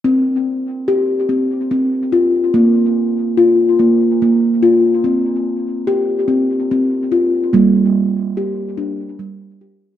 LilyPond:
<<
  \new Staff \with { instrumentName = "Steel tongue drum" } { \time 3/4 \key bes \major \tempo 4 = 72 r4 g'8 c'4 f'8 | r4 f'8 bes4 f'8 | c'4 g'8 c'4 f'8 | bes4 g'8 d'4 g'8 | }
  \new Staff \with { instrumentName = "Steel tongue drum" } { \time 3/4 \key bes \major c'2 c'4 | bes2 bes4 | r2 c'4 | g2 g4 | }
>>